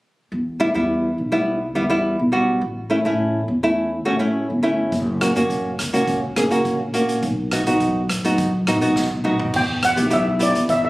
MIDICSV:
0, 0, Header, 1, 5, 480
1, 0, Start_track
1, 0, Key_signature, 1, "minor"
1, 0, Tempo, 576369
1, 264, Time_signature, 4, 2, 24, 8
1, 9074, End_track
2, 0, Start_track
2, 0, Title_t, "Steel pan"
2, 0, Program_c, 0, 114
2, 7963, Note_on_c, 0, 79, 83
2, 8200, Note_off_c, 0, 79, 0
2, 8200, Note_on_c, 0, 78, 75
2, 8416, Note_off_c, 0, 78, 0
2, 8438, Note_on_c, 0, 76, 77
2, 8655, Note_off_c, 0, 76, 0
2, 8684, Note_on_c, 0, 74, 68
2, 8910, Note_on_c, 0, 76, 81
2, 8921, Note_off_c, 0, 74, 0
2, 8964, Note_off_c, 0, 76, 0
2, 9033, Note_on_c, 0, 76, 79
2, 9074, Note_off_c, 0, 76, 0
2, 9074, End_track
3, 0, Start_track
3, 0, Title_t, "Nylon-string guitar"
3, 0, Program_c, 1, 24
3, 497, Note_on_c, 1, 55, 64
3, 499, Note_on_c, 1, 59, 58
3, 503, Note_on_c, 1, 64, 73
3, 575, Note_off_c, 1, 55, 0
3, 575, Note_off_c, 1, 59, 0
3, 577, Note_off_c, 1, 64, 0
3, 620, Note_on_c, 1, 55, 62
3, 626, Note_on_c, 1, 64, 66
3, 628, Note_on_c, 1, 59, 57
3, 910, Note_off_c, 1, 55, 0
3, 911, Note_off_c, 1, 59, 0
3, 913, Note_off_c, 1, 64, 0
3, 1097, Note_on_c, 1, 55, 64
3, 1101, Note_on_c, 1, 59, 66
3, 1101, Note_on_c, 1, 64, 74
3, 1317, Note_off_c, 1, 55, 0
3, 1318, Note_off_c, 1, 59, 0
3, 1319, Note_off_c, 1, 64, 0
3, 1459, Note_on_c, 1, 55, 72
3, 1460, Note_on_c, 1, 59, 61
3, 1462, Note_on_c, 1, 64, 73
3, 1535, Note_off_c, 1, 55, 0
3, 1535, Note_off_c, 1, 59, 0
3, 1535, Note_off_c, 1, 64, 0
3, 1579, Note_on_c, 1, 55, 70
3, 1583, Note_on_c, 1, 59, 68
3, 1585, Note_on_c, 1, 64, 74
3, 1797, Note_off_c, 1, 55, 0
3, 1799, Note_off_c, 1, 59, 0
3, 1799, Note_off_c, 1, 64, 0
3, 1931, Note_on_c, 1, 55, 67
3, 1936, Note_on_c, 1, 59, 63
3, 1938, Note_on_c, 1, 66, 74
3, 2176, Note_off_c, 1, 55, 0
3, 2178, Note_off_c, 1, 59, 0
3, 2178, Note_off_c, 1, 66, 0
3, 2413, Note_on_c, 1, 57, 68
3, 2417, Note_on_c, 1, 61, 56
3, 2420, Note_on_c, 1, 64, 70
3, 2492, Note_off_c, 1, 57, 0
3, 2492, Note_off_c, 1, 61, 0
3, 2492, Note_off_c, 1, 64, 0
3, 2539, Note_on_c, 1, 57, 67
3, 2547, Note_on_c, 1, 61, 59
3, 2547, Note_on_c, 1, 64, 72
3, 2829, Note_off_c, 1, 57, 0
3, 2830, Note_off_c, 1, 61, 0
3, 2832, Note_off_c, 1, 64, 0
3, 3024, Note_on_c, 1, 57, 69
3, 3026, Note_on_c, 1, 61, 62
3, 3028, Note_on_c, 1, 64, 77
3, 3239, Note_off_c, 1, 57, 0
3, 3239, Note_off_c, 1, 61, 0
3, 3241, Note_off_c, 1, 64, 0
3, 3375, Note_on_c, 1, 57, 74
3, 3378, Note_on_c, 1, 66, 80
3, 3379, Note_on_c, 1, 61, 64
3, 3452, Note_off_c, 1, 57, 0
3, 3453, Note_off_c, 1, 61, 0
3, 3453, Note_off_c, 1, 66, 0
3, 3492, Note_on_c, 1, 57, 71
3, 3497, Note_on_c, 1, 61, 68
3, 3497, Note_on_c, 1, 64, 75
3, 3713, Note_off_c, 1, 57, 0
3, 3715, Note_off_c, 1, 61, 0
3, 3715, Note_off_c, 1, 64, 0
3, 3853, Note_on_c, 1, 57, 72
3, 3855, Note_on_c, 1, 61, 65
3, 3859, Note_on_c, 1, 64, 75
3, 4097, Note_off_c, 1, 57, 0
3, 4097, Note_off_c, 1, 61, 0
3, 4098, Note_off_c, 1, 64, 0
3, 4338, Note_on_c, 1, 58, 70
3, 4338, Note_on_c, 1, 61, 63
3, 4341, Note_on_c, 1, 66, 75
3, 4413, Note_off_c, 1, 58, 0
3, 4413, Note_off_c, 1, 61, 0
3, 4414, Note_off_c, 1, 66, 0
3, 4461, Note_on_c, 1, 58, 67
3, 4465, Note_on_c, 1, 61, 59
3, 4470, Note_on_c, 1, 66, 76
3, 4750, Note_off_c, 1, 58, 0
3, 4750, Note_off_c, 1, 61, 0
3, 4751, Note_off_c, 1, 66, 0
3, 4940, Note_on_c, 1, 58, 72
3, 4944, Note_on_c, 1, 61, 63
3, 4944, Note_on_c, 1, 66, 83
3, 5157, Note_off_c, 1, 58, 0
3, 5158, Note_off_c, 1, 61, 0
3, 5159, Note_off_c, 1, 66, 0
3, 5299, Note_on_c, 1, 58, 70
3, 5299, Note_on_c, 1, 61, 63
3, 5301, Note_on_c, 1, 68, 80
3, 5373, Note_off_c, 1, 61, 0
3, 5374, Note_off_c, 1, 58, 0
3, 5375, Note_off_c, 1, 68, 0
3, 5418, Note_on_c, 1, 58, 73
3, 5422, Note_on_c, 1, 61, 64
3, 5425, Note_on_c, 1, 66, 76
3, 5637, Note_off_c, 1, 58, 0
3, 5638, Note_off_c, 1, 61, 0
3, 5638, Note_off_c, 1, 66, 0
3, 5777, Note_on_c, 1, 58, 74
3, 5781, Note_on_c, 1, 61, 65
3, 5783, Note_on_c, 1, 66, 81
3, 6020, Note_off_c, 1, 58, 0
3, 6020, Note_off_c, 1, 66, 0
3, 6021, Note_off_c, 1, 61, 0
3, 6258, Note_on_c, 1, 59, 71
3, 6263, Note_on_c, 1, 63, 62
3, 6267, Note_on_c, 1, 66, 76
3, 6335, Note_off_c, 1, 59, 0
3, 6336, Note_off_c, 1, 63, 0
3, 6336, Note_off_c, 1, 66, 0
3, 6385, Note_on_c, 1, 59, 69
3, 6387, Note_on_c, 1, 63, 61
3, 6388, Note_on_c, 1, 66, 70
3, 6672, Note_off_c, 1, 59, 0
3, 6673, Note_off_c, 1, 63, 0
3, 6673, Note_off_c, 1, 66, 0
3, 6867, Note_on_c, 1, 59, 70
3, 6871, Note_on_c, 1, 63, 66
3, 6874, Note_on_c, 1, 66, 77
3, 7082, Note_off_c, 1, 59, 0
3, 7083, Note_off_c, 1, 63, 0
3, 7083, Note_off_c, 1, 66, 0
3, 7223, Note_on_c, 1, 59, 67
3, 7228, Note_on_c, 1, 66, 76
3, 7229, Note_on_c, 1, 63, 63
3, 7297, Note_off_c, 1, 59, 0
3, 7299, Note_off_c, 1, 63, 0
3, 7299, Note_off_c, 1, 66, 0
3, 7339, Note_on_c, 1, 59, 75
3, 7342, Note_on_c, 1, 63, 64
3, 7344, Note_on_c, 1, 66, 75
3, 7558, Note_off_c, 1, 59, 0
3, 7559, Note_off_c, 1, 63, 0
3, 7560, Note_off_c, 1, 66, 0
3, 7694, Note_on_c, 1, 59, 68
3, 7699, Note_on_c, 1, 63, 61
3, 7699, Note_on_c, 1, 66, 73
3, 7939, Note_off_c, 1, 59, 0
3, 7940, Note_off_c, 1, 63, 0
3, 7941, Note_off_c, 1, 66, 0
3, 8299, Note_on_c, 1, 59, 62
3, 8303, Note_on_c, 1, 67, 67
3, 8306, Note_on_c, 1, 64, 53
3, 8373, Note_off_c, 1, 59, 0
3, 8375, Note_off_c, 1, 64, 0
3, 8375, Note_off_c, 1, 67, 0
3, 8415, Note_on_c, 1, 59, 67
3, 8415, Note_on_c, 1, 67, 74
3, 8416, Note_on_c, 1, 64, 61
3, 8566, Note_off_c, 1, 59, 0
3, 8566, Note_off_c, 1, 64, 0
3, 8567, Note_off_c, 1, 67, 0
3, 8655, Note_on_c, 1, 59, 64
3, 8660, Note_on_c, 1, 64, 58
3, 8660, Note_on_c, 1, 67, 72
3, 8949, Note_off_c, 1, 59, 0
3, 8951, Note_off_c, 1, 64, 0
3, 8952, Note_off_c, 1, 67, 0
3, 9074, End_track
4, 0, Start_track
4, 0, Title_t, "Upright bass"
4, 0, Program_c, 2, 32
4, 265, Note_on_c, 2, 40, 71
4, 596, Note_off_c, 2, 40, 0
4, 625, Note_on_c, 2, 40, 80
4, 950, Note_off_c, 2, 40, 0
4, 984, Note_on_c, 2, 35, 64
4, 1460, Note_off_c, 2, 35, 0
4, 1460, Note_on_c, 2, 40, 80
4, 1792, Note_off_c, 2, 40, 0
4, 1827, Note_on_c, 2, 35, 68
4, 2151, Note_off_c, 2, 35, 0
4, 2177, Note_on_c, 2, 33, 79
4, 2511, Note_off_c, 2, 33, 0
4, 2539, Note_on_c, 2, 33, 77
4, 2866, Note_off_c, 2, 33, 0
4, 2899, Note_on_c, 2, 40, 74
4, 3376, Note_off_c, 2, 40, 0
4, 3376, Note_on_c, 2, 33, 78
4, 3710, Note_off_c, 2, 33, 0
4, 3747, Note_on_c, 2, 31, 65
4, 4070, Note_off_c, 2, 31, 0
4, 4100, Note_on_c, 2, 30, 75
4, 4432, Note_off_c, 2, 30, 0
4, 4461, Note_on_c, 2, 30, 77
4, 4787, Note_off_c, 2, 30, 0
4, 4816, Note_on_c, 2, 37, 71
4, 5297, Note_on_c, 2, 30, 77
4, 5310, Note_off_c, 2, 37, 0
4, 5631, Note_off_c, 2, 30, 0
4, 5662, Note_on_c, 2, 34, 65
4, 5989, Note_off_c, 2, 34, 0
4, 6019, Note_on_c, 2, 35, 81
4, 6352, Note_off_c, 2, 35, 0
4, 6388, Note_on_c, 2, 35, 74
4, 6712, Note_off_c, 2, 35, 0
4, 6747, Note_on_c, 2, 42, 71
4, 7222, Note_on_c, 2, 35, 81
4, 7235, Note_off_c, 2, 42, 0
4, 7555, Note_off_c, 2, 35, 0
4, 7586, Note_on_c, 2, 35, 67
4, 7912, Note_off_c, 2, 35, 0
4, 7945, Note_on_c, 2, 40, 78
4, 8277, Note_off_c, 2, 40, 0
4, 8308, Note_on_c, 2, 35, 88
4, 8754, Note_off_c, 2, 35, 0
4, 8791, Note_on_c, 2, 40, 82
4, 9074, Note_off_c, 2, 40, 0
4, 9074, End_track
5, 0, Start_track
5, 0, Title_t, "Drums"
5, 4099, Note_on_c, 9, 36, 89
5, 4100, Note_on_c, 9, 42, 45
5, 4182, Note_off_c, 9, 36, 0
5, 4183, Note_off_c, 9, 42, 0
5, 4341, Note_on_c, 9, 37, 69
5, 4341, Note_on_c, 9, 42, 66
5, 4424, Note_off_c, 9, 37, 0
5, 4424, Note_off_c, 9, 42, 0
5, 4466, Note_on_c, 9, 42, 51
5, 4550, Note_off_c, 9, 42, 0
5, 4580, Note_on_c, 9, 36, 67
5, 4583, Note_on_c, 9, 42, 49
5, 4663, Note_off_c, 9, 36, 0
5, 4666, Note_off_c, 9, 42, 0
5, 4822, Note_on_c, 9, 37, 63
5, 4822, Note_on_c, 9, 42, 72
5, 4905, Note_off_c, 9, 37, 0
5, 4905, Note_off_c, 9, 42, 0
5, 4950, Note_on_c, 9, 42, 52
5, 5033, Note_off_c, 9, 42, 0
5, 5060, Note_on_c, 9, 36, 97
5, 5062, Note_on_c, 9, 42, 51
5, 5143, Note_off_c, 9, 36, 0
5, 5145, Note_off_c, 9, 42, 0
5, 5300, Note_on_c, 9, 37, 67
5, 5300, Note_on_c, 9, 42, 67
5, 5384, Note_off_c, 9, 37, 0
5, 5384, Note_off_c, 9, 42, 0
5, 5426, Note_on_c, 9, 42, 53
5, 5509, Note_off_c, 9, 42, 0
5, 5538, Note_on_c, 9, 42, 48
5, 5539, Note_on_c, 9, 36, 68
5, 5621, Note_off_c, 9, 42, 0
5, 5623, Note_off_c, 9, 36, 0
5, 5778, Note_on_c, 9, 42, 69
5, 5862, Note_off_c, 9, 42, 0
5, 5903, Note_on_c, 9, 42, 53
5, 5986, Note_off_c, 9, 42, 0
5, 6018, Note_on_c, 9, 42, 49
5, 6019, Note_on_c, 9, 36, 82
5, 6101, Note_off_c, 9, 42, 0
5, 6103, Note_off_c, 9, 36, 0
5, 6259, Note_on_c, 9, 37, 75
5, 6259, Note_on_c, 9, 42, 67
5, 6342, Note_off_c, 9, 37, 0
5, 6342, Note_off_c, 9, 42, 0
5, 6384, Note_on_c, 9, 42, 52
5, 6467, Note_off_c, 9, 42, 0
5, 6499, Note_on_c, 9, 42, 48
5, 6500, Note_on_c, 9, 36, 66
5, 6582, Note_off_c, 9, 42, 0
5, 6583, Note_off_c, 9, 36, 0
5, 6742, Note_on_c, 9, 37, 63
5, 6742, Note_on_c, 9, 42, 70
5, 6825, Note_off_c, 9, 37, 0
5, 6825, Note_off_c, 9, 42, 0
5, 6867, Note_on_c, 9, 42, 52
5, 6950, Note_off_c, 9, 42, 0
5, 6979, Note_on_c, 9, 42, 55
5, 6982, Note_on_c, 9, 36, 99
5, 7062, Note_off_c, 9, 42, 0
5, 7065, Note_off_c, 9, 36, 0
5, 7221, Note_on_c, 9, 37, 68
5, 7221, Note_on_c, 9, 42, 61
5, 7305, Note_off_c, 9, 37, 0
5, 7305, Note_off_c, 9, 42, 0
5, 7345, Note_on_c, 9, 42, 52
5, 7428, Note_off_c, 9, 42, 0
5, 7461, Note_on_c, 9, 38, 42
5, 7462, Note_on_c, 9, 36, 66
5, 7545, Note_off_c, 9, 36, 0
5, 7545, Note_off_c, 9, 38, 0
5, 7702, Note_on_c, 9, 45, 63
5, 7785, Note_off_c, 9, 45, 0
5, 7824, Note_on_c, 9, 43, 67
5, 7907, Note_off_c, 9, 43, 0
5, 7942, Note_on_c, 9, 49, 80
5, 7943, Note_on_c, 9, 36, 90
5, 8025, Note_off_c, 9, 49, 0
5, 8026, Note_off_c, 9, 36, 0
5, 8184, Note_on_c, 9, 37, 71
5, 8184, Note_on_c, 9, 42, 70
5, 8267, Note_off_c, 9, 37, 0
5, 8267, Note_off_c, 9, 42, 0
5, 8306, Note_on_c, 9, 42, 60
5, 8389, Note_off_c, 9, 42, 0
5, 8420, Note_on_c, 9, 42, 57
5, 8423, Note_on_c, 9, 36, 73
5, 8504, Note_off_c, 9, 42, 0
5, 8506, Note_off_c, 9, 36, 0
5, 8663, Note_on_c, 9, 42, 72
5, 8747, Note_off_c, 9, 42, 0
5, 8788, Note_on_c, 9, 42, 55
5, 8872, Note_off_c, 9, 42, 0
5, 8902, Note_on_c, 9, 42, 59
5, 8903, Note_on_c, 9, 36, 99
5, 8986, Note_off_c, 9, 36, 0
5, 8986, Note_off_c, 9, 42, 0
5, 9074, End_track
0, 0, End_of_file